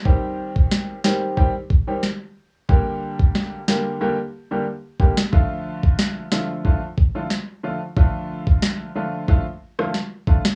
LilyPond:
<<
  \new Staff \with { instrumentName = "Grand piano" } { \clef bass \time 4/4 \key d \phrygian \tempo 4 = 91 <ees g c' g'>4. <ees g c' g'>8 <ees g c' g'>16 r8 <ees g c' g'>16 r4 | <d g bes g'>4. <d g bes g'>8 <d g bes g'>16 r8 <d g bes g'>16 r8 <d g bes g'>16 r16 | <d f a f'>4. <d f a f'>8 <d f a f'>16 r8 <d f a f'>16 r8 <d f a f'>16 r16 | <d f a f'>4. <d f a f'>8 <d f a f'>16 r8 <d f a f'>16 r8 <d f a f'>16 r16 | }
  \new DrumStaff \with { instrumentName = "Drums" } \drummode { \time 4/4 bd8. bd16 sn8 sn8 bd8 bd8 sn4 | bd8. bd16 sn8 sn8 r4 r8 bd16 sn16 | bd8. bd16 sn8 sn8 bd8 bd8 sn4 | bd8. bd16 sn4 bd8. ss16 sn8 bd16 sn16 | }
>>